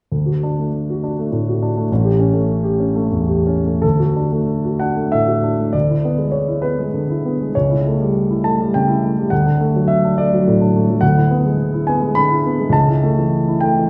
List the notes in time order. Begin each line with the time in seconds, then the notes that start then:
0.12 D2
0.26 F#4
0.43 D4
0.59 A3
0.90 F#4
1.04 D4
1.19 A3
1.32 A2
1.48 F#4
1.62 D4
1.77 A3
1.92 A1
2.05 G4
2.19 C#4
2.33 A3
2.64 G4
2.80 C#4
2.95 A3
3.12 E2
3.29 G4
3.47 C#4
3.66 A3
3.82 D2 A4
4.00 F#4
4.16 D4
4.32 A3
4.65 F#4
4.80 D4 F#5
4.96 A3
5.12 A2 E5
5.27 F#4
5.44 D4
5.59 A3
5.73 D2 D5
5.89 E4
6.05 B3
6.18 G#3
6.32 C#5
6.48 E4
6.62 B3 B4
6.79 G#3
6.94 D3
7.10 E4
7.25 B3
7.41 G#3
7.55 C#2 C#5
7.71 E4
7.87 A3
8.01 G3
8.30 E4
8.44 A3 A5
8.60 G3
8.74 C#3 G5
8.88 E4
9.04 A3
9.18 G3
9.30 D2 F#5
9.46 D4
9.61 A3
9.76 F#3
9.88 E5
10.05 D4
10.18 A3 D5
10.34 F#3
10.47 A2
10.61 D4
10.76 A3
10.89 F#3
11.01 D2 F#5
11.16 E4
11.31 B3
11.46 G#3
11.74 E4
11.87 B3 G#5
12.02 G#3
12.15 D3 B5
12.30 E4
12.46 B3
12.60 G#3
12.69 C#2 A5
12.89 E4
13.03 A3
13.19 E3
13.48 E4
13.61 A3 G5
13.79 E3